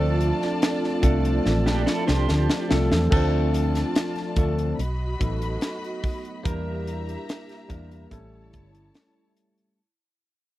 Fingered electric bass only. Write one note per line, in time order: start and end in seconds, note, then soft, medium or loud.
0.00 0.31 D2 loud
1.03 1.38 C2 medium
1.46 1.67 A1 loud
1.67 1.84 A#1 medium
2.09 2.26 C2 medium
2.30 2.47 D2 medium
2.71 2.88 C2 medium
2.92 3.09 E2 medium
3.12 3.82 D2 loud
4.37 4.72 D2 medium
4.79 5.14 B1 loud
5.21 5.56 A1 medium
6.45 7.16 E2 loud
7.70 8.05 E2 medium
8.12 8.56 A1 loud
8.54 8.89 G1 medium